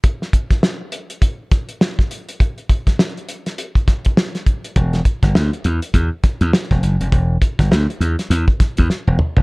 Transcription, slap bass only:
X:1
M:4/4
L:1/16
Q:"Swing 16ths" 1/4=102
K:Em
V:1 name="Slap bass" clef=bass
z16 | z16 | E,,,2 z G,,, D,, z E,, z E,, z2 E,, z E,,, F,,, =F,,, | E,,,2 z G,,, D,, z E,, z E,, z2 E,, z E,,, z =F,,, |]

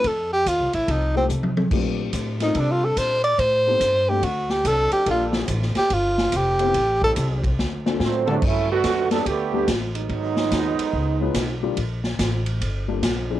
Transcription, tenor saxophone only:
X:1
M:4/4
L:1/8
Q:"Swing" 1/4=143
K:Dphr
V:1 name="Tenor saxophone"
A G F =E _E C z2 | z3 E (3D F A c d | c3 G ^F G A G | F z2 G F2 G2- |
G A z6 | z8 | z8 | z8 |]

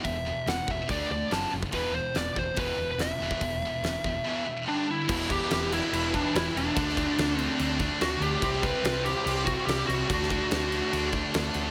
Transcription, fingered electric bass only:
X:1
M:4/4
L:1/8
Q:1/4=144
K:Em
V:1 name="Fingered electric bass" clef=bass
E,,,2 E,,, E,,, D,, D,, F,,, F,,, | E,,,2 E,,, E,,, E,,, E,,, E,,, E,,, | E,,,2 E,,, E,,, z4 | E,,,2 E,,,2 E,,,2 E,,, E,,, |
D,,2 D,,2 D,,2 D,, D,, | C,,2 C,,2 C,,2 C,, C,, | D,,2 D,,2 D,,2 D,, D,, |]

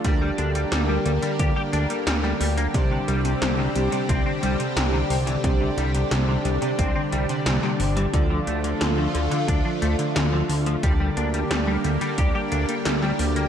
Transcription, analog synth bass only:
X:1
M:4/4
L:1/8
Q:1/4=89
K:Cmix
V:1 name="Analog synth bass" clef=bass
D,, D,, D,, D,, D,, D,, D,, D,, | C,, C,, C,, C,, C,, C,, C,, C,, | C,, C,, C,, C,, C,, C,, C,, G,,, | D,, D,, D,, D,, D,, D,, D,, D,, |
D,, D,, D,, D,, D,, D,, D,, D,, |]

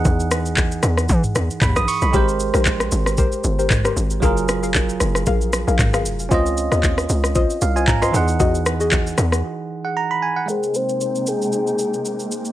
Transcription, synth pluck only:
X:1
M:4/4
L:1/16
Q:"Swing 16ths" 1/4=115
K:Ab
V:1 name="Synth pluck"
z16 | [GBc] z2 [GBc] z4 [GBc]3 [GBc] z [GBc] z2 | [ABf] z2 [ABf] z4 [ABf]3 [ABf] z [ABf] z2 | [Fce] z2 [Fce] z4 [Fce]3 [Fce] z [Fce] z2 |
[^F^G^d] z2 [FGd] z12 | z16 |]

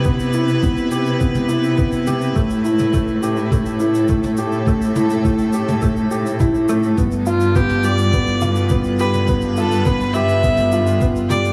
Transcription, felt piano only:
X:1
M:4/4
L:1/8
Q:1/4=104
K:Am
V:1 name="Felt piano"
B, E B, G B, E B, G | A, E A, G A, E A, G | A, E A, G A, G E A, | B, F B, G B, F B, G |
B, F B, G B, F B, G |]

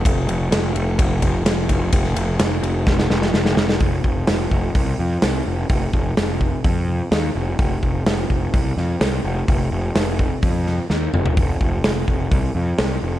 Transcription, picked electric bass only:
X:1
M:4/4
L:1/8
Q:1/4=127
K:Cm
V:1 name="Picked electric bass" clef=bass
F,,, F,,, F,,, F,,, F,,, F,,, F,,, F,,, | F,,, F,,, F,,, F,,, F,,, F,,, F,,, F,,, | F,,, F,,, F,,, F,,, C,, F,, C,, F,,, | F,,, F,,, F,,,2 F,,2 E,, F,,, |
F,,, F,,, F,,, F,,, C,, F,, C,, F,,, | F,,, F,,, F,,,2 F,,2 E,, F,,, | F,,, F,,, F,,, F,,, C,, F,, C,, F,,, |]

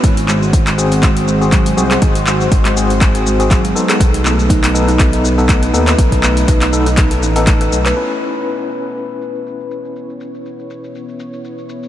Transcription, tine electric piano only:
X:1
M:4/4
L:1/16
Q:"Swing 16ths" 1/4=121
K:C#m
V:1 name="Tine electric piano"
z6 [^B,FG]4- [B,FG] [B,FG]2 z [B,FG] z | z6 [^B,FG] z2 [B,FG]2 [B,FG]3 [=B,DA]2- | [B,DA]6 [B,DA]4- [B,DA] [B,DA]2 z [B,DA] z | z6 [B,DA] z2 [B,DA]2 [B,DA] z [B,DA]2 z |
[CEB]16- | [CEB]16 |]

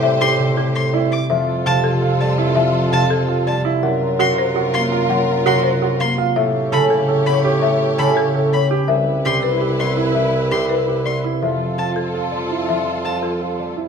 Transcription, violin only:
X:1
M:7/8
L:1/8
Q:1/4=166
K:Aphr
V:1 name="Violin"
z c' z2 c' z d' | [K:Flyd] z2 a z2 a z | z2 a z2 a z | z2 c' z2 c' z |
z2 c' z2 c' z | z2 b z2 b z | z2 b z2 b z | z2 c' z2 c' z |
z2 c' z2 c' z | z2 a z4 | z2 a z4 |]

